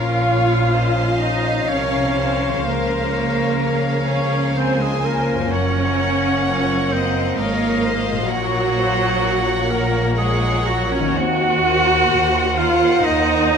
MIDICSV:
0, 0, Header, 1, 10, 480
1, 0, Start_track
1, 0, Key_signature, -5, "minor"
1, 0, Tempo, 967742
1, 1317, Time_signature, 3, 2, 24, 8
1, 2270, Tempo, 933126
1, 5150, Tempo, 996678
1, 5630, Tempo, 950872
1, 6843, End_track
2, 0, Start_track
2, 0, Title_t, "Violin section"
2, 0, Program_c, 0, 48
2, 0, Note_on_c, 0, 77, 47
2, 1772, Note_off_c, 0, 77, 0
2, 1796, Note_on_c, 0, 77, 39
2, 2264, Note_off_c, 0, 77, 0
2, 2273, Note_on_c, 0, 80, 43
2, 2752, Note_on_c, 0, 78, 47
2, 2754, Note_off_c, 0, 80, 0
2, 3713, Note_off_c, 0, 78, 0
2, 3717, Note_on_c, 0, 77, 47
2, 4178, Note_off_c, 0, 77, 0
2, 4180, Note_on_c, 0, 78, 50
2, 5139, Note_off_c, 0, 78, 0
2, 5145, Note_on_c, 0, 78, 48
2, 5617, Note_off_c, 0, 78, 0
2, 5874, Note_on_c, 0, 78, 46
2, 6332, Note_off_c, 0, 78, 0
2, 6337, Note_on_c, 0, 78, 54
2, 6817, Note_off_c, 0, 78, 0
2, 6823, Note_on_c, 0, 78, 51
2, 6843, Note_off_c, 0, 78, 0
2, 6843, End_track
3, 0, Start_track
3, 0, Title_t, "Clarinet"
3, 0, Program_c, 1, 71
3, 0, Note_on_c, 1, 77, 57
3, 575, Note_off_c, 1, 77, 0
3, 594, Note_on_c, 1, 75, 46
3, 834, Note_on_c, 1, 73, 55
3, 842, Note_off_c, 1, 75, 0
3, 1315, Note_off_c, 1, 73, 0
3, 1318, Note_on_c, 1, 70, 54
3, 2027, Note_on_c, 1, 73, 46
3, 2034, Note_off_c, 1, 70, 0
3, 2272, Note_on_c, 1, 72, 50
3, 2280, Note_off_c, 1, 73, 0
3, 2392, Note_on_c, 1, 68, 46
3, 2400, Note_off_c, 1, 72, 0
3, 2514, Note_on_c, 1, 70, 49
3, 2522, Note_off_c, 1, 68, 0
3, 2747, Note_off_c, 1, 70, 0
3, 2751, Note_on_c, 1, 73, 60
3, 3481, Note_on_c, 1, 72, 50
3, 3489, Note_off_c, 1, 73, 0
3, 3643, Note_off_c, 1, 72, 0
3, 3712, Note_on_c, 1, 70, 54
3, 4040, Note_off_c, 1, 70, 0
3, 4185, Note_on_c, 1, 66, 62
3, 4907, Note_on_c, 1, 70, 54
3, 4915, Note_off_c, 1, 66, 0
3, 5147, Note_off_c, 1, 70, 0
3, 5150, Note_on_c, 1, 68, 61
3, 5388, Note_on_c, 1, 66, 54
3, 5395, Note_off_c, 1, 68, 0
3, 5509, Note_on_c, 1, 73, 60
3, 5517, Note_off_c, 1, 66, 0
3, 5629, Note_on_c, 1, 78, 80
3, 5637, Note_off_c, 1, 73, 0
3, 6337, Note_on_c, 1, 77, 65
3, 6345, Note_off_c, 1, 78, 0
3, 6575, Note_on_c, 1, 75, 75
3, 6582, Note_off_c, 1, 77, 0
3, 6843, Note_off_c, 1, 75, 0
3, 6843, End_track
4, 0, Start_track
4, 0, Title_t, "Flute"
4, 0, Program_c, 2, 73
4, 0, Note_on_c, 2, 77, 52
4, 577, Note_off_c, 2, 77, 0
4, 600, Note_on_c, 2, 75, 44
4, 836, Note_on_c, 2, 73, 46
4, 843, Note_off_c, 2, 75, 0
4, 1314, Note_off_c, 2, 73, 0
4, 1317, Note_on_c, 2, 70, 52
4, 1878, Note_off_c, 2, 70, 0
4, 2031, Note_on_c, 2, 73, 46
4, 2266, Note_off_c, 2, 73, 0
4, 2268, Note_on_c, 2, 72, 47
4, 2391, Note_on_c, 2, 68, 45
4, 2399, Note_off_c, 2, 72, 0
4, 2511, Note_on_c, 2, 70, 46
4, 2518, Note_off_c, 2, 68, 0
4, 2755, Note_on_c, 2, 73, 53
4, 2763, Note_off_c, 2, 70, 0
4, 3480, Note_on_c, 2, 72, 49
4, 3487, Note_off_c, 2, 73, 0
4, 3711, Note_on_c, 2, 70, 50
4, 3719, Note_off_c, 2, 72, 0
4, 4046, Note_off_c, 2, 70, 0
4, 4185, Note_on_c, 2, 66, 57
4, 4911, Note_on_c, 2, 70, 55
4, 4919, Note_off_c, 2, 66, 0
4, 5153, Note_on_c, 2, 68, 54
4, 5160, Note_off_c, 2, 70, 0
4, 5389, Note_on_c, 2, 66, 54
4, 5397, Note_off_c, 2, 68, 0
4, 5502, Note_off_c, 2, 66, 0
4, 5505, Note_on_c, 2, 73, 55
4, 5630, Note_on_c, 2, 78, 67
4, 5638, Note_off_c, 2, 73, 0
4, 6339, Note_on_c, 2, 77, 66
4, 6346, Note_off_c, 2, 78, 0
4, 6575, Note_on_c, 2, 75, 68
4, 6582, Note_off_c, 2, 77, 0
4, 6843, Note_off_c, 2, 75, 0
4, 6843, End_track
5, 0, Start_track
5, 0, Title_t, "Violin section"
5, 0, Program_c, 3, 48
5, 0, Note_on_c, 3, 70, 41
5, 0, Note_on_c, 3, 73, 37
5, 92, Note_off_c, 3, 70, 0
5, 100, Note_off_c, 3, 73, 0
5, 106, Note_on_c, 3, 73, 43
5, 348, Note_on_c, 3, 75, 39
5, 353, Note_on_c, 3, 72, 37
5, 354, Note_off_c, 3, 73, 0
5, 834, Note_on_c, 3, 70, 42
5, 834, Note_on_c, 3, 73, 44
5, 835, Note_off_c, 3, 75, 0
5, 837, Note_off_c, 3, 72, 0
5, 1072, Note_off_c, 3, 73, 0
5, 1075, Note_on_c, 3, 72, 40
5, 1305, Note_off_c, 3, 70, 0
5, 1316, Note_on_c, 3, 70, 40
5, 1545, Note_on_c, 3, 73, 43
5, 1548, Note_off_c, 3, 70, 0
5, 1775, Note_off_c, 3, 72, 0
5, 1781, Note_off_c, 3, 73, 0
5, 1785, Note_on_c, 3, 70, 42
5, 1787, Note_on_c, 3, 73, 39
5, 2259, Note_off_c, 3, 73, 0
5, 2266, Note_on_c, 3, 72, 45
5, 2750, Note_off_c, 3, 70, 0
5, 2751, Note_off_c, 3, 72, 0
5, 2756, Note_on_c, 3, 70, 40
5, 2757, Note_off_c, 3, 70, 0
5, 2757, Note_on_c, 3, 70, 42
5, 3229, Note_off_c, 3, 70, 0
5, 3234, Note_on_c, 3, 73, 45
5, 3235, Note_on_c, 3, 70, 41
5, 3471, Note_on_c, 3, 75, 46
5, 3476, Note_off_c, 3, 73, 0
5, 3701, Note_off_c, 3, 70, 0
5, 3709, Note_off_c, 3, 75, 0
5, 3716, Note_on_c, 3, 73, 49
5, 3717, Note_on_c, 3, 75, 45
5, 3947, Note_on_c, 3, 72, 46
5, 3949, Note_off_c, 3, 73, 0
5, 4177, Note_off_c, 3, 75, 0
5, 4182, Note_on_c, 3, 70, 47
5, 4185, Note_off_c, 3, 72, 0
5, 4186, Note_on_c, 3, 73, 47
5, 4420, Note_off_c, 3, 70, 0
5, 4421, Note_on_c, 3, 72, 50
5, 4658, Note_off_c, 3, 73, 0
5, 4664, Note_on_c, 3, 73, 45
5, 4666, Note_off_c, 3, 72, 0
5, 4666, Note_on_c, 3, 70, 42
5, 5134, Note_off_c, 3, 70, 0
5, 5136, Note_off_c, 3, 73, 0
5, 5140, Note_on_c, 3, 70, 51
5, 5142, Note_on_c, 3, 73, 50
5, 5615, Note_off_c, 3, 70, 0
5, 5616, Note_off_c, 3, 73, 0
5, 5865, Note_on_c, 3, 72, 49
5, 5869, Note_on_c, 3, 70, 52
5, 6327, Note_off_c, 3, 70, 0
5, 6327, Note_off_c, 3, 72, 0
5, 6333, Note_on_c, 3, 70, 49
5, 6334, Note_on_c, 3, 72, 50
5, 6815, Note_off_c, 3, 70, 0
5, 6815, Note_off_c, 3, 72, 0
5, 6824, Note_on_c, 3, 70, 51
5, 6825, Note_on_c, 3, 72, 51
5, 6843, Note_off_c, 3, 70, 0
5, 6843, Note_off_c, 3, 72, 0
5, 6843, End_track
6, 0, Start_track
6, 0, Title_t, "Harp"
6, 0, Program_c, 4, 46
6, 0, Note_on_c, 4, 46, 37
6, 0, Note_on_c, 4, 61, 29
6, 0, Note_on_c, 4, 65, 29
6, 0, Note_on_c, 4, 70, 29
6, 1229, Note_on_c, 4, 49, 38
6, 1252, Note_on_c, 4, 58, 30
6, 1268, Note_off_c, 4, 65, 0
6, 1274, Note_on_c, 4, 65, 30
6, 1290, Note_off_c, 4, 70, 0
6, 1291, Note_off_c, 4, 46, 0
6, 1296, Note_on_c, 4, 70, 31
6, 1731, Note_off_c, 4, 61, 0
6, 2662, Note_on_c, 4, 42, 37
6, 2678, Note_off_c, 4, 58, 0
6, 2684, Note_on_c, 4, 58, 33
6, 2700, Note_off_c, 4, 65, 0
6, 2707, Note_on_c, 4, 65, 32
6, 2725, Note_off_c, 4, 70, 0
6, 2727, Note_off_c, 4, 49, 0
6, 2731, Note_on_c, 4, 70, 31
6, 4093, Note_on_c, 4, 46, 43
6, 4110, Note_off_c, 4, 58, 0
6, 4116, Note_on_c, 4, 58, 33
6, 4140, Note_on_c, 4, 66, 33
6, 4157, Note_off_c, 4, 70, 0
6, 4159, Note_off_c, 4, 42, 0
6, 4163, Note_on_c, 4, 70, 33
6, 4181, Note_off_c, 4, 65, 0
6, 5544, Note_on_c, 4, 51, 45
6, 5559, Note_off_c, 4, 58, 0
6, 5565, Note_on_c, 4, 58, 40
6, 5580, Note_off_c, 4, 66, 0
6, 5586, Note_on_c, 4, 66, 39
6, 5605, Note_off_c, 4, 46, 0
6, 5607, Note_on_c, 4, 72, 38
6, 6127, Note_off_c, 4, 70, 0
6, 6843, Note_off_c, 4, 51, 0
6, 6843, Note_off_c, 4, 58, 0
6, 6843, Note_off_c, 4, 66, 0
6, 6843, Note_off_c, 4, 72, 0
6, 6843, End_track
7, 0, Start_track
7, 0, Title_t, "Viola section"
7, 0, Program_c, 5, 48
7, 0, Note_on_c, 5, 65, 66
7, 577, Note_off_c, 5, 65, 0
7, 595, Note_on_c, 5, 63, 59
7, 833, Note_off_c, 5, 63, 0
7, 833, Note_on_c, 5, 61, 56
7, 1314, Note_off_c, 5, 61, 0
7, 1314, Note_on_c, 5, 58, 64
7, 2016, Note_off_c, 5, 58, 0
7, 2027, Note_on_c, 5, 61, 58
7, 2264, Note_on_c, 5, 60, 56
7, 2268, Note_off_c, 5, 61, 0
7, 2386, Note_off_c, 5, 60, 0
7, 2389, Note_on_c, 5, 56, 53
7, 2506, Note_on_c, 5, 58, 60
7, 2511, Note_off_c, 5, 56, 0
7, 2745, Note_off_c, 5, 58, 0
7, 2749, Note_on_c, 5, 61, 70
7, 3478, Note_off_c, 5, 61, 0
7, 3478, Note_on_c, 5, 60, 59
7, 3711, Note_on_c, 5, 58, 61
7, 3712, Note_off_c, 5, 60, 0
7, 4184, Note_off_c, 5, 58, 0
7, 4184, Note_on_c, 5, 54, 75
7, 4907, Note_on_c, 5, 58, 68
7, 4908, Note_off_c, 5, 54, 0
7, 5143, Note_off_c, 5, 58, 0
7, 5143, Note_on_c, 5, 56, 66
7, 5382, Note_on_c, 5, 54, 67
7, 5383, Note_off_c, 5, 56, 0
7, 5503, Note_on_c, 5, 61, 68
7, 5507, Note_off_c, 5, 54, 0
7, 5622, Note_on_c, 5, 66, 92
7, 5626, Note_off_c, 5, 61, 0
7, 6336, Note_off_c, 5, 66, 0
7, 6338, Note_on_c, 5, 65, 80
7, 6569, Note_on_c, 5, 63, 85
7, 6576, Note_off_c, 5, 65, 0
7, 6843, Note_off_c, 5, 63, 0
7, 6843, End_track
8, 0, Start_track
8, 0, Title_t, "French horn section"
8, 0, Program_c, 6, 60
8, 0, Note_on_c, 6, 53, 42
8, 0, Note_on_c, 6, 61, 43
8, 1303, Note_off_c, 6, 61, 0
8, 1319, Note_on_c, 6, 58, 44
8, 2735, Note_off_c, 6, 53, 0
8, 2746, Note_on_c, 6, 53, 44
8, 4161, Note_off_c, 6, 53, 0
8, 4181, Note_off_c, 6, 58, 0
8, 4186, Note_on_c, 6, 54, 48
8, 4187, Note_on_c, 6, 58, 51
8, 5551, Note_off_c, 6, 54, 0
8, 5551, Note_off_c, 6, 58, 0
8, 5633, Note_on_c, 6, 60, 56
8, 5634, Note_on_c, 6, 58, 53
8, 5816, Note_off_c, 6, 60, 0
8, 5817, Note_off_c, 6, 58, 0
8, 6843, End_track
9, 0, Start_track
9, 0, Title_t, "Cello section"
9, 0, Program_c, 7, 48
9, 0, Note_on_c, 7, 46, 44
9, 819, Note_off_c, 7, 46, 0
9, 841, Note_on_c, 7, 48, 43
9, 1318, Note_off_c, 7, 48, 0
9, 1321, Note_on_c, 7, 49, 44
9, 2734, Note_off_c, 7, 49, 0
9, 2751, Note_on_c, 7, 42, 45
9, 3693, Note_off_c, 7, 42, 0
9, 3711, Note_on_c, 7, 44, 44
9, 4175, Note_off_c, 7, 44, 0
9, 4184, Note_on_c, 7, 46, 50
9, 5609, Note_off_c, 7, 46, 0
9, 5628, Note_on_c, 7, 39, 60
9, 6050, Note_off_c, 7, 39, 0
9, 6103, Note_on_c, 7, 39, 55
9, 6519, Note_off_c, 7, 39, 0
9, 6576, Note_on_c, 7, 39, 61
9, 6843, Note_off_c, 7, 39, 0
9, 6843, End_track
10, 0, Start_track
10, 0, Title_t, "Double bass section"
10, 0, Program_c, 8, 48
10, 0, Note_on_c, 8, 34, 46
10, 818, Note_off_c, 8, 34, 0
10, 840, Note_on_c, 8, 36, 40
10, 1318, Note_off_c, 8, 36, 0
10, 1318, Note_on_c, 8, 37, 43
10, 2733, Note_off_c, 8, 37, 0
10, 2753, Note_on_c, 8, 30, 49
10, 3694, Note_off_c, 8, 30, 0
10, 3713, Note_on_c, 8, 32, 42
10, 4175, Note_off_c, 8, 32, 0
10, 4186, Note_on_c, 8, 34, 56
10, 5610, Note_off_c, 8, 34, 0
10, 5631, Note_on_c, 8, 39, 62
10, 6052, Note_off_c, 8, 39, 0
10, 6106, Note_on_c, 8, 39, 67
10, 6520, Note_off_c, 8, 39, 0
10, 6577, Note_on_c, 8, 39, 64
10, 6843, Note_off_c, 8, 39, 0
10, 6843, End_track
0, 0, End_of_file